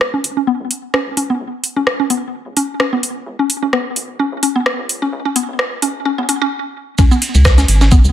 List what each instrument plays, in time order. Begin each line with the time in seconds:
Already playing: analog synth bass C#2
0.01 cross-stick
0.14 synth arpeggio sound C#4
0.24 analog synth bass G#1, open hi-hat
0.37 synth arpeggio sound C#4
0.47 synth arpeggio sound B3
0.60 analog synth bass C#2
0.71 open hi-hat
0.94 synth arpeggio sound C#4, cross-stick
1.07 analog synth bass C#2
1.17 synth arpeggio sound C#4, open hi-hat
1.30 synth arpeggio sound B3
1.40 analog synth bass C#2
1.64 open hi-hat
1.76 analog synth bass C#2, synth arpeggio sound C#4
1.87 cross-stick
2.00 synth arpeggio sound C#4
2.10 analog synth bass G#1, synth arpeggio sound B3, open hi-hat
2.46 analog synth bass C#2
2.57 synth arpeggio sound C#4, open hi-hat
2.80 synth arpeggio sound C#4, cross-stick
2.93 analog synth bass C#2, synth arpeggio sound B3
3.03 open hi-hat
3.26 analog synth bass C#2
3.39 synth arpeggio sound C#4
3.50 open hi-hat
3.62 analog synth bass C#2, synth arpeggio sound C#4
3.73 synth arpeggio sound B3, cross-stick
3.96 analog synth bass G#1, open hi-hat
4.19 synth arpeggio sound C#4
4.32 analog synth bass C#2
4.43 synth arpeggio sound C#4, open hi-hat
4.56 synth arpeggio sound B3
4.66 cross-stick
4.79 analog synth bass C#2
4.89 open hi-hat
5.02 synth arpeggio sound C#4
5.13 analog synth bass C#2
5.25 synth arpeggio sound C#4
5.36 synth arpeggio sound B3, open hi-hat
5.49 analog synth bass C#2
5.59 cross-stick
5.82 analog synth bass G#1, synth arpeggio sound C#4, open hi-hat
6.05 synth arpeggio sound C#4
6.18 analog synth bass C#2, synth arpeggio sound B3
6.29 synth arpeggio sound C#4, open hi-hat
6.42 synth arpeggio sound C#4
6.98 analog synth bass C#2, synth arpeggio sound C#4, kick, ride, shaker
7.11 synth arpeggio sound B3, shaker
7.22 open hi-hat, ride
7.35 analog synth bass C#2, ride, shaker
7.45 kick, cross-stick, snare, ride, shaker
7.58 synth arpeggio sound C#4, snare, open hi-hat, shaker
7.68 analog synth bass G#1, open hi-hat, ride
7.81 synth arpeggio sound C#4, snare, shaker
7.92 synth arpeggio sound B3, kick, open hi-hat, ride, shaker
8.04 analog synth bass C#2, shaker